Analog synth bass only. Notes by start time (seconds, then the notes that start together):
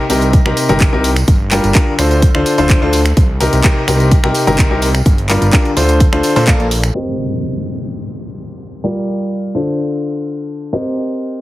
0.10 C2
0.46 C2
0.69 G1
0.93 C2
1.28 G1
1.64 G1
1.99 D2
2.35 D2
2.58 D1
2.82 D2
3.17 C2
3.53 C2
3.88 C2
4.24 C2
4.47 G1
4.71 C2
5.06 G1
5.42 G1
5.77 D2
6.13 D2
6.36 A#2
6.60 A#1